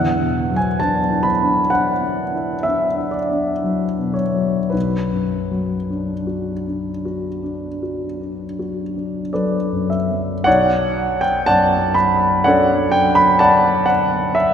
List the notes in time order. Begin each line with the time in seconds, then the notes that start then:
Already playing: E2 F#5
0.19 B2
0.51 F#3
0.56 G#5
0.80 D4 A5
1.11 E4
1.23 B5
1.42 D4
1.70 E4 F#5
2.03 D4
2.35 E4
2.63 D4 E5
2.99 E4
3.11 D5
3.30 D4
3.64 F#3
3.98 B2
4.14 C#5
4.34 F#3
4.70 B1 B4
5.12 F#2
5.51 F#3
5.90 D4
6.27 F#4
6.66 D4
7.05 F#4
7.43 D4
7.83 F#4
8.21 D4
8.59 F#4
8.96 D4
9.33 F#3 A4 B4 D5
9.72 F#2
9.90 E5
10.11 F#3
10.44 B1 C#5 D5 F#5
11.21 G5
11.46 F#2 D5 F#5 A5
11.94 B5
12.44 F#3 C#4 D4 A4 C#5 D5 F#5
12.92 G5
13.15 B5
13.39 D5 F#5 A5
13.86 F#5
14.35 E5